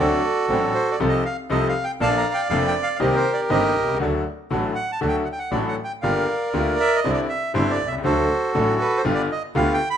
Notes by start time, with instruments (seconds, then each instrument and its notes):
0.00 double bass D2, grand piano D2 D3 F#3 C4 D4 A4, bandoneon C4 D4 F#4 A4 D5
0.49 double bass A1, grand piano A1 A2 F#3 C4 D4 A4, bandoneon C4 D4 F#4
0.74 bandoneon C5
0.91 bandoneon D5
0.99 double bass C2, grand piano C2 C3 F3 C4 D#4 A4, bandoneon A3 D#4 F4
1.09 bandoneon D#5
1.26 bandoneon F5
1.50 double bass C2, grand piano C2 C3 F3 C4 D#4 A4, bandoneon A3 D#4 F4 D#5
1.68 bandoneon F5
1.84 bandoneon G5
2.00 double bass A#1, grand piano A#1 A#2 F3 A#3 D4 A4, bandoneon A#3 D4 A4 D5 F5 A5
2.18 bandoneon A#5
2.34 bandoneon G5
2.49 double bass F1, grand piano F1 F2 F3 A#3 D4 A4, bandoneon A#3 D4 A4 F5
2.67 bandoneon G5
2.83 bandoneon F5
2.96 grand piano C2 D#3, bandoneon D#5 F5
3.00 double bass C2, grand piano C3 A#3 C4 G4, bandoneon C4 D#4 G4 A#4
3.16 bandoneon C5
3.33 bandoneon D5
3.49 grand piano G1 G2 D#3 A#3 C4 G4, double bass G1, bandoneon C4 D#4 G4 A#4 D#5
3.76 double bass C2
3.82 grand piano B1
3.88 grand piano C2
3.94 grand piano C#2
4.00 grand piano D2 D3 F#3 A3 F#4, double bass D2, bandoneon D4 F#4 A4
4.51 grand piano A1 A2 D3 F#3 A3 F#4, double bass A1, bandoneon D4 F#4 A4
4.75 bandoneon F#5
4.92 bandoneon A5
5.01 grand piano D2 D3 F#3 A3 F#4, double bass D2, bandoneon D4 F#4 A4
5.08 bandoneon G5
5.25 bandoneon F#5
5.32 bandoneon G5
5.39 bandoneon F#5
5.51 grand piano A1 A2 D3 F#3 A3 F#4, double bass A1, bandoneon D4 F#4 A4 D5
5.68 bandoneon F#5
5.84 bandoneon G5
6.02 grand piano G1 G2 D3 G3 A#3 F4, double bass G1, bandoneon F4 G4 A#4 D5 F5
6.54 double bass D2, grand piano D2 D3 G3 A#3 F4, bandoneon F4 G4 A#4
6.80 bandoneon E5
6.96 bandoneon D#5
7.04 double bass C2, grand piano C2 C3 D3 G3 C4 E4, bandoneon D4 E4 C5
7.13 bandoneon D5
7.29 bandoneon E5
7.54 grand piano G1 G2 D3 G3 C4 E4, double bass G1, bandoneon D4 E4 C5
7.71 bandoneon D5
7.79 double bass C2
7.86 grand piano B1, bandoneon E5
7.92 grand piano C2
7.98 grand piano C#2
8.04 grand piano D2 D3 F#3 A3 F#4, double bass D2, bandoneon D4 F#4 A4 C5
8.54 grand piano A1 A2 D3 F#3 A3 F#4, double bass A1, bandoneon D4 F#4 A4
8.81 bandoneon B4
8.97 bandoneon C5
9.05 double bass G1, grand piano G1 G2 D3 G3 B3 F4, bandoneon B3 F4 G4
9.15 bandoneon D5
9.31 bandoneon D#5
9.55 double bass D2, grand piano D2 D3 G3 B3 F4, bandoneon B3 F4 G4 F5
9.74 bandoneon G5
9.90 bandoneon B5